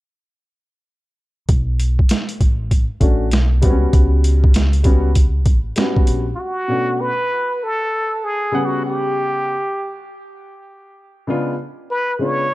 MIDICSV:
0, 0, Header, 1, 5, 480
1, 0, Start_track
1, 0, Key_signature, 2, "minor"
1, 0, Tempo, 612245
1, 1167, Time_signature, 4, 2, 24, 8
1, 9831, End_track
2, 0, Start_track
2, 0, Title_t, "Muted trumpet"
2, 0, Program_c, 0, 59
2, 4979, Note_on_c, 0, 65, 61
2, 5014, Note_on_c, 0, 66, 88
2, 5026, Note_off_c, 0, 65, 0
2, 5495, Note_on_c, 0, 71, 101
2, 5507, Note_off_c, 0, 66, 0
2, 5984, Note_on_c, 0, 69, 92
2, 5996, Note_off_c, 0, 71, 0
2, 6460, Note_on_c, 0, 68, 89
2, 6471, Note_off_c, 0, 69, 0
2, 6785, Note_on_c, 0, 66, 86
2, 6796, Note_off_c, 0, 68, 0
2, 6936, Note_off_c, 0, 66, 0
2, 6943, Note_on_c, 0, 67, 88
2, 7864, Note_off_c, 0, 67, 0
2, 9335, Note_on_c, 0, 71, 95
2, 9554, Note_off_c, 0, 71, 0
2, 9571, Note_on_c, 0, 73, 97
2, 9831, Note_off_c, 0, 73, 0
2, 9831, End_track
3, 0, Start_track
3, 0, Title_t, "Upright piano"
3, 0, Program_c, 1, 0
3, 2355, Note_on_c, 1, 57, 73
3, 2362, Note_on_c, 1, 61, 69
3, 2369, Note_on_c, 1, 62, 69
3, 2376, Note_on_c, 1, 66, 80
3, 2549, Note_off_c, 1, 57, 0
3, 2552, Note_off_c, 1, 61, 0
3, 2556, Note_off_c, 1, 62, 0
3, 2559, Note_off_c, 1, 66, 0
3, 2835, Note_on_c, 1, 55, 79
3, 2843, Note_on_c, 1, 59, 79
3, 2850, Note_on_c, 1, 60, 58
3, 2858, Note_on_c, 1, 66, 88
3, 2899, Note_on_c, 1, 61, 74
3, 2914, Note_off_c, 1, 60, 0
3, 3622, Note_off_c, 1, 55, 0
3, 3626, Note_off_c, 1, 59, 0
3, 3634, Note_off_c, 1, 66, 0
3, 3654, Note_off_c, 1, 61, 0
3, 3791, Note_on_c, 1, 55, 70
3, 3800, Note_on_c, 1, 59, 70
3, 3807, Note_on_c, 1, 61, 62
3, 3814, Note_on_c, 1, 66, 74
3, 3987, Note_off_c, 1, 55, 0
3, 3991, Note_off_c, 1, 59, 0
3, 3995, Note_off_c, 1, 61, 0
3, 3998, Note_off_c, 1, 66, 0
3, 4517, Note_on_c, 1, 55, 65
3, 4524, Note_on_c, 1, 59, 61
3, 4533, Note_on_c, 1, 61, 62
3, 4541, Note_on_c, 1, 66, 79
3, 4884, Note_off_c, 1, 55, 0
3, 4888, Note_off_c, 1, 59, 0
3, 4892, Note_off_c, 1, 61, 0
3, 4896, Note_off_c, 1, 66, 0
3, 5238, Note_on_c, 1, 47, 57
3, 5243, Note_on_c, 1, 57, 53
3, 5248, Note_on_c, 1, 61, 57
3, 5252, Note_on_c, 1, 62, 49
3, 5257, Note_on_c, 1, 66, 66
3, 5544, Note_off_c, 1, 47, 0
3, 5546, Note_off_c, 1, 57, 0
3, 5549, Note_off_c, 1, 61, 0
3, 5551, Note_off_c, 1, 62, 0
3, 5553, Note_off_c, 1, 66, 0
3, 6677, Note_on_c, 1, 49, 75
3, 6683, Note_on_c, 1, 55, 74
3, 6688, Note_on_c, 1, 59, 70
3, 6695, Note_on_c, 1, 61, 68
3, 6700, Note_on_c, 1, 78, 88
3, 7463, Note_off_c, 1, 49, 0
3, 7466, Note_off_c, 1, 55, 0
3, 7469, Note_off_c, 1, 59, 0
3, 7472, Note_off_c, 1, 61, 0
3, 7475, Note_off_c, 1, 78, 0
3, 8837, Note_on_c, 1, 49, 74
3, 8841, Note_on_c, 1, 56, 71
3, 8849, Note_on_c, 1, 59, 76
3, 8856, Note_on_c, 1, 62, 73
3, 8859, Note_on_c, 1, 65, 84
3, 9030, Note_off_c, 1, 49, 0
3, 9032, Note_off_c, 1, 56, 0
3, 9036, Note_off_c, 1, 59, 0
3, 9039, Note_off_c, 1, 62, 0
3, 9041, Note_off_c, 1, 65, 0
3, 9555, Note_on_c, 1, 49, 62
3, 9558, Note_on_c, 1, 56, 58
3, 9564, Note_on_c, 1, 59, 55
3, 9572, Note_on_c, 1, 62, 56
3, 9575, Note_on_c, 1, 65, 62
3, 9749, Note_off_c, 1, 49, 0
3, 9750, Note_off_c, 1, 56, 0
3, 9753, Note_off_c, 1, 59, 0
3, 9757, Note_off_c, 1, 62, 0
3, 9759, Note_off_c, 1, 65, 0
3, 9831, End_track
4, 0, Start_track
4, 0, Title_t, "Upright bass"
4, 0, Program_c, 2, 32
4, 1167, Note_on_c, 2, 35, 83
4, 1533, Note_off_c, 2, 35, 0
4, 1885, Note_on_c, 2, 33, 73
4, 2252, Note_off_c, 2, 33, 0
4, 2359, Note_on_c, 2, 33, 76
4, 2605, Note_off_c, 2, 33, 0
4, 2605, Note_on_c, 2, 35, 85
4, 2846, Note_off_c, 2, 35, 0
4, 2846, Note_on_c, 2, 37, 66
4, 3029, Note_off_c, 2, 37, 0
4, 3083, Note_on_c, 2, 37, 88
4, 4278, Note_off_c, 2, 37, 0
4, 4278, Note_on_c, 2, 33, 83
4, 4465, Note_off_c, 2, 33, 0
4, 4766, Note_on_c, 2, 34, 72
4, 4949, Note_off_c, 2, 34, 0
4, 9831, End_track
5, 0, Start_track
5, 0, Title_t, "Drums"
5, 1165, Note_on_c, 9, 42, 73
5, 1166, Note_on_c, 9, 36, 102
5, 1244, Note_off_c, 9, 42, 0
5, 1245, Note_off_c, 9, 36, 0
5, 1408, Note_on_c, 9, 42, 71
5, 1486, Note_off_c, 9, 42, 0
5, 1561, Note_on_c, 9, 36, 79
5, 1639, Note_off_c, 9, 36, 0
5, 1640, Note_on_c, 9, 42, 108
5, 1655, Note_on_c, 9, 38, 106
5, 1718, Note_off_c, 9, 42, 0
5, 1733, Note_off_c, 9, 38, 0
5, 1793, Note_on_c, 9, 42, 46
5, 1871, Note_off_c, 9, 42, 0
5, 1886, Note_on_c, 9, 36, 82
5, 1886, Note_on_c, 9, 42, 61
5, 1965, Note_off_c, 9, 36, 0
5, 1965, Note_off_c, 9, 42, 0
5, 2126, Note_on_c, 9, 36, 60
5, 2127, Note_on_c, 9, 42, 81
5, 2204, Note_off_c, 9, 36, 0
5, 2205, Note_off_c, 9, 42, 0
5, 2358, Note_on_c, 9, 36, 82
5, 2358, Note_on_c, 9, 42, 58
5, 2436, Note_off_c, 9, 36, 0
5, 2437, Note_off_c, 9, 42, 0
5, 2599, Note_on_c, 9, 42, 72
5, 2613, Note_on_c, 9, 38, 91
5, 2677, Note_off_c, 9, 42, 0
5, 2691, Note_off_c, 9, 38, 0
5, 2842, Note_on_c, 9, 42, 72
5, 2845, Note_on_c, 9, 36, 85
5, 2920, Note_off_c, 9, 42, 0
5, 2924, Note_off_c, 9, 36, 0
5, 3083, Note_on_c, 9, 36, 93
5, 3083, Note_on_c, 9, 42, 66
5, 3161, Note_off_c, 9, 42, 0
5, 3162, Note_off_c, 9, 36, 0
5, 3325, Note_on_c, 9, 42, 78
5, 3404, Note_off_c, 9, 42, 0
5, 3479, Note_on_c, 9, 36, 92
5, 3558, Note_off_c, 9, 36, 0
5, 3561, Note_on_c, 9, 42, 102
5, 3575, Note_on_c, 9, 38, 100
5, 3639, Note_off_c, 9, 42, 0
5, 3654, Note_off_c, 9, 38, 0
5, 3710, Note_on_c, 9, 42, 43
5, 3789, Note_off_c, 9, 42, 0
5, 3796, Note_on_c, 9, 42, 66
5, 3803, Note_on_c, 9, 36, 76
5, 3875, Note_off_c, 9, 42, 0
5, 3881, Note_off_c, 9, 36, 0
5, 4041, Note_on_c, 9, 42, 89
5, 4044, Note_on_c, 9, 36, 71
5, 4119, Note_off_c, 9, 42, 0
5, 4123, Note_off_c, 9, 36, 0
5, 4278, Note_on_c, 9, 42, 64
5, 4279, Note_on_c, 9, 36, 86
5, 4356, Note_off_c, 9, 42, 0
5, 4357, Note_off_c, 9, 36, 0
5, 4515, Note_on_c, 9, 42, 74
5, 4529, Note_on_c, 9, 38, 92
5, 4594, Note_off_c, 9, 42, 0
5, 4608, Note_off_c, 9, 38, 0
5, 4677, Note_on_c, 9, 36, 90
5, 4755, Note_off_c, 9, 36, 0
5, 4759, Note_on_c, 9, 42, 80
5, 4838, Note_off_c, 9, 42, 0
5, 9831, End_track
0, 0, End_of_file